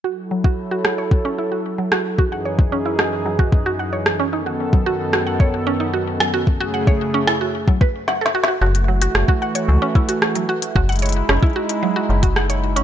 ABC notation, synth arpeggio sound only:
X:1
M:4/4
L:1/16
Q:1/4=112
K:F#dor
V:1 name="Synth arpeggio sound"
F z F, F z F f c z C E F z F, F z | F f c z C E F z F, F z F f c z C | D F z F, F z F f c z C D F z F, F | z F f c z C E F z F, B z f A F F |
F z F, F z F f c z C E F z F, F z | F f c z C E F z F, F z F f c z C |]